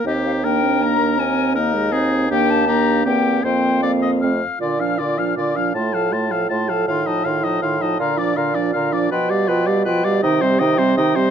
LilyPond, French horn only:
\new Staff \with { instrumentName = "French horn" } { \clef bass \time 3/4 \key aes \lydian \tempo 4 = 160 c'4 bes8 c'8 bes8 bes8 | c'8 c'8 bes8 aes8 c'4 | \key bes \major bes4 bes4 bes4 | bes4 bes4 a8 r8 |
d8 f8 d8 f8 d8 f8 | a8 f8 a8 f8 a8 f8 | ees8 f8 ees8 f8 ees8 f8 | d8 f8 d8 f8 d8 f8 |
f8 g8 f8 g8 f8 g8 | ees8 g8 ees8 g8 ees8 g8 | }